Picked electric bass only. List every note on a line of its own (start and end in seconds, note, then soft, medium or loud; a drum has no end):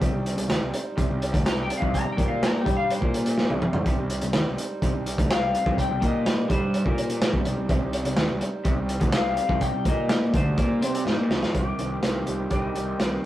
0.02 0.13 C2 loud
0.13 0.36 C2 medium
0.37 0.48 C2 medium
0.49 0.60 D#2 loud
0.61 0.73 C2 medium
0.73 muted picked electric bass stroke soft
0.98 1.09 C2 medium
1.10 1.33 C2 medium
1.34 1.45 D2 loud
1.45 1.68 C2 medium
1.82 2.05 C2 medium
2.06 2.17 C2 medium
2.19 2.63 A#2 medium
2.66 3.00 G2 medium
3.02 3.47 A#2 medium
3.50 3.61 C2 medium
3.63 3.74 C2 medium
3.76 3.85 C2 medium
3.86 3.97 C2 medium
4.00 4.21 C2 medium
4.24 4.34 C2 medium
4.35 4.46 D#2 medium
4.46 4.57 C2 medium
4.58 muted picked electric bass stroke soft
4.83 4.94 C2 medium
4.94 5.17 C2 medium
5.18 5.29 D2 loud
5.30 5.52 C2 medium
5.66 5.88 C2 medium
5.90 6.01 C2 medium
6.02 6.47 A#2 medium
6.50 6.83 G2 loud
6.86 7.30 A#2 loud
7.34 7.45 C2 loud
7.46 7.57 C2 medium
7.58 7.69 C2 medium
7.69 7.81 C2 loud
7.83 8.05 C2 medium
8.06 8.17 C2 medium
8.18 8.29 D#2 loud
8.30 8.41 C2 medium
8.42 muted picked electric bass stroke soft
8.65 8.76 C2 medium
8.78 9.00 C2 medium
9.01 9.12 D2 loud
9.15 9.37 C2 medium
9.49 9.72 C2 loud
9.73 9.84 C2 medium
9.86 10.30 A#2 medium
10.34 10.56 D2 loud
10.58 10.80 A#2 medium
10.83 11.05 C3 loud
11.06 11.17 G#2 loud
11.19 11.29 A#2 loud
11.30 11.41 C2 medium
11.43 11.54 F2 loud
11.55 11.72 C2 loud
11.79 11.96 C2 medium
12.03 12.20 C2 medium
12.28 12.45 C2 medium
12.50 12.68 C2 medium
12.76 12.93 C2 medium
13.00 13.17 C2 medium